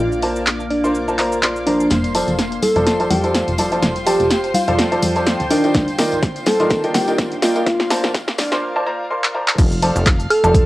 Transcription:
Already playing: A#3 D5 F5 D6
0.00 A#1 F4
0.12 shaker
0.22 A#3 F4 A#4 C5 D5 A5, open hi-hat
0.36 shaker
0.45 C6, clap, shaker
0.60 shaker
0.70 D4, open hi-hat
0.84 A#3 F4 A#4 C5 D5 C6, shaker
0.95 shaker
1.08 A#3 F4 A#4 C5 D5 A5, shaker
1.19 A#3 F4 A#4 C5 D5 A#5, clap, open hi-hat
1.32 shaker
1.43 A#3 F4 A#4 C5 D5 C6, clap, shaker
1.56 shaker
1.67 F3 D4 F4 A#4 C5 D5 A#5, open hi-hat
1.80 shaker
1.90 F1 F4 C5 C6, snare, closed hi-hat, tambourine, high conga
2.04 C5, closed hi-hat, tambourine
2.15 F3 F4 A4 C5 D5 A5, open hi-hat, tambourine
2.28 F1, closed hi-hat, tambourine
2.39 snare, closed hi-hat, tambourine
2.52 closed hi-hat, tambourine
2.62 A4, open hi-hat, tambourine, high conga
2.74 F1 F3 F4 A4 C5 D5 G5 A5, closed hi-hat, tambourine
2.87 snare, closed hi-hat, tambourine
3.00 F3 F4 A4 C5 D5 A5, closed hi-hat, tambourine
3.10 F2 G4, open hi-hat, tambourine, high conga
3.24 F3 F4 A4 C5 D5 A5, closed hi-hat, tambourine
3.35 snare, closed hi-hat, tambourine
3.48 F1, closed hi-hat, tambourine
3.58 F3 F4 A4 C5 D5 A5, open hi-hat, tambourine, high conga
3.72 F3 F4 A4 C5 D5 A5, closed hi-hat, tambourine
3.82 F1, snare, closed hi-hat, tambourine, high conga
3.96 closed hi-hat, tambourine
4.06 F3 F4 G4 A4 C5 D5 A5, open hi-hat, tambourine
4.20 F1, closed hi-hat, tambourine
4.30 snare, closed hi-hat, tambourine
4.44 closed hi-hat, tambourine
4.54 F4, open hi-hat, tambourine, high conga
4.67 F1 F3 F4 A4 C5 D5 A5, closed hi-hat, tambourine
4.79 snare, closed hi-hat, tambourine
4.92 F3 F4 A4 C5 D5 A5, closed hi-hat, tambourine
5.02 F2, open hi-hat, tambourine, high conga
5.16 F3 F4 A4 C5 D5 A5, closed hi-hat, tambourine
5.26 snare, closed hi-hat, tambourine
5.40 D#1, closed hi-hat, tambourine
5.50 D#3 D4 F4 A#4 D5 D#5 G5, open hi-hat, tambourine
5.59 A#3
5.64 D#3 F4 A#4 D5 D#5 G5, closed hi-hat, tambourine
5.74 D#1, kick, snare, closed hi-hat, tambourine, high conga
5.88 closed hi-hat, tambourine
5.98 D#3 F4 A#4 D5 D#5 G5, snare, open hi-hat, tambourine
6.12 D#1, closed hi-hat, tambourine
6.23 kick, snare, closed hi-hat, tambourine
6.36 closed hi-hat, tambourine
6.46 A4 F5, snare, open hi-hat, tambourine, high conga
6.60 D#1 D#3 F4 A#4 D5 D#5 C6, closed hi-hat, tambourine
6.70 kick, snare, closed hi-hat, tambourine
6.84 D#3 F4 A#4 D5 D#5 G5, closed hi-hat, tambourine
6.94 D#2 G4, snare, open hi-hat, tambourine, high conga
7.08 D#3 F4 A#4 D5 D#5 G5, closed hi-hat, tambourine
7.18 kick, snare, closed hi-hat, tambourine
7.32 D#1, closed hi-hat, tambourine
7.42 A#3 F4 A#4 D5 D#5 G5, snare, open hi-hat, tambourine, high conga
7.56 A#3 F4 A#4 D5 D#5 G5, closed hi-hat, tambourine
7.66 A#1 F4, kick, snare, closed hi-hat, tambourine, high conga
7.80 snare, closed hi-hat, tambourine
7.90 A#3 F4 A#4 C5 D5 A5, snare, open hi-hat, tambourine
8.04 A#1, snare, closed hi-hat, tambourine
8.14 kick, snare, closed hi-hat, tambourine
8.28 snare, closed hi-hat, tambourine
8.38 D4, snare, open hi-hat, tambourine, high conga
8.52 A#1 A#3 F4 A#4 C5 D5 C6, snare, closed hi-hat, tambourine
8.76 A#3 F4 A#4 C5 D5 A5
8.86 A#3 F4 A#4 C5 D5 A#5
9.11 A#3 F4 A#4 C5 D5 C6
9.24 clap
9.35 F3 F4 A#4 C5 D5 A#5
9.48 clap
9.59 F1 F4 F5 F6, kick, closed hi-hat, crash, shaker
9.72 closed hi-hat, shaker
9.82 F3 F4 A4 C5 D5 A5, open hi-hat
9.96 F1, closed hi-hat, shaker
10.06 C5, kick, clap, closed hi-hat, shaker
10.20 closed hi-hat, shaker
10.30 A4 G5, open hi-hat, high woodblock
10.44 F1 F3 F4 A4 C5 D5 A5, closed hi-hat, shaker
10.55 kick, closed hi-hat, shaker

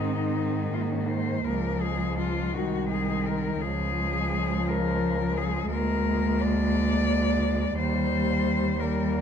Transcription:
Already playing: G#2 D#3 C4 D#4
0.72 A#3 F4
0.81 D#4
0.91 C#4
1.00 D#4
1.09 C5
1.44 C#2 F3 G#3 A#4
1.82 G#4
2.18 F4
2.53 C2 D#3 G#3 F#4
2.89 G#4
3.26 A#4
3.61 C#2 F3 G#3 G#4
4.68 A#4
5.37 G#4
5.71 D2 G#3 A#3 A#4
6.41 D5
7.78 D#2 G3 A#3 C5
8.79 G3 A#3 A#4

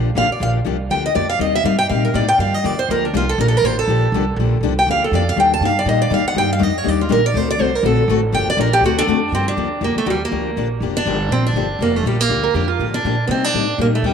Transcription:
Already playing: A#1
0.15 A1 D3 F3 A#3 D4 G4 F5
0.29 D5, muted upright bass stroke
0.40 A#1 D3 F3 A#3 D4 G4 F5
0.65 C2 D3 F3 A#3 D4 G4
0.90 D2 D3 F3 A#3 D4 G4 G5
1.06 D#5
1.15 F2 D3 F3 A#3 D4 G4 D5
1.30 F5
1.39 D#2 C3 G3 A#3 D#4 G4 D#5
1.55 E5
1.64 G2 C3 G3 A#3 D#4 G4 F5
1.79 G5
1.89 A#2 C3 G3 A#3 D#4 G4 F5
2.05 A#4
2.14 A2 C3 G3 A#3 D#4 G4 D5
2.28 G5
2.38 G2 D3 F3 A#3 D4 G4 F5
2.54 D#5
2.64 F2 D3 F3 A#3 D4 G4 D5
2.79 C5
2.89 D2 D3 F3 A#3 D4 G4 A#4
3.05 D4
3.14 C2 D3 F3 A#3 D4 F4 G4
3.29 A4
3.38 A#1 D3 F3 A#3 D4 G4 A#4
3.48 A4
3.57 A#4
3.62 A1 D3 F3 A#3 D4 G4 C5
3.79 A4
3.87 A#1 D3 F3 A#3 D4 G4
4.12 C2 D3 F3 A#3 D4 G4
4.36 A#1 D3 F3 A#3
4.41 D4 G4
4.61 C2 D3 F3 A#3 D4 G4
4.79 G5
4.86 D2 D3 F3 A#3 D4 G4
4.91 F5
5.04 A4
5.11 F2 D3 F3 A#3 D4 G4 D5
5.29 F5
5.36 D#2 D#3 G3 A#3 D4 G4 G5
5.54 A5
5.60 G2 D#3 G3 A#3 D4 G4
5.65 F5
5.79 D5
5.85 A#2 D#3 G3 A#3 D4 G4 D#5
6.02 D5
6.10 G#2 D#3 G3 A#3 D4 G4 F5
6.24 F#5, muted upright bass stroke
6.34 G2 D#3 G3 A#3 D4 G4 G5
6.53 F5
6.59 F2 D#3 G3 A#3 D4 G4
6.63 D#5
6.78 C#5
6.84 D#2 D#3 G3 A#3 D4 G4
6.88 D5
7.01 F4
7.09 A#1 D#3 G3 A#3 D4 G4 A#4
7.26 D5
7.34 D2 D3 A3 C4 F#4 A4 C5
7.50 D5
7.58 C2 D3 A3 C4 F#4 A4 C5
7.75 A#4
7.83 A#1 D3 A3 C4 F#4 A4
8.08 A1 D3 A3 C4 F#4 A4
8.32 G1 D3 F3 A#3 D4 G4 G5
8.47 D5, muted upright bass stroke
8.57 A#1 D3 F3 A#3 D4 G4 A#4
8.73 G4
8.81 D2 D3 A3 C4 F#4 A4
8.86 F#4
8.98 D4 A4
9.07 F2 D3 A3 C4 F#4 A4
9.32 G2 D3 F3 A#3 C4 D4 G4
9.48 D4
9.56 D#2 D3 F3 A#3 D4 G4
9.81 F2 D3 F3 A#3 D4 G4
9.96 A3, muted upright bass stroke
10.06 D#2 D3 F3 F#3 A#3 D4 G4
10.10 G3
10.25 A#3
10.31 D2 D3 F3 A#3 D4 G4
10.56 A#1 D3 F3 A#3 D4 G4
10.80 F1 D3 F3 A#3 D4 G4
10.97 D4
11.05 G1 D3 F3 A#3 D4 G4
11.29 A#1 D3 F3 A#3 C4 D4 G4
11.47 D4
11.53 G1 D3 F3 A#3 D4 G4
11.79 F1 D3 F3 A#3 D4 G4
11.96 A3
12.03 A#1 D3 F3 G3 A#3 D4 G4
12.20 A#3
12.29 D2 D3 F3 A#3 D4 G4
12.43 A#4
12.54 F2 D3 F3 A#3 D4 G4
12.68 F4
12.79 A2 D3 F3 A#3 D4 G4
12.94 D4
13.04 A#2 D3 F3 A#3 D4 G4
13.27 C3 G3 A#3 B3 C4 D#4 G4
13.44 D4
13.54 A2 C3 G3 A#3 D#4 G4
13.78 A#2 C3 G3 A#3 D#4 G4
13.95 A3
14.02 D#2 C3 G3 A#3 D#4 G4

